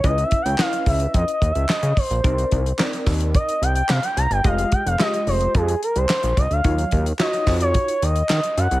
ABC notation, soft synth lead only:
X:1
M:4/4
L:1/16
Q:1/4=109
K:Cm
V:1 name="Soft synth lead"
(3e2 _f2 g2 =f2 _f2 (3e2 e2 f2 e2 c2- | c4 z4 e2 g g f g b g | f2 g f e e c2 A2 B c3 e f- | f3 z e2 e _d3 e4 _g2 |]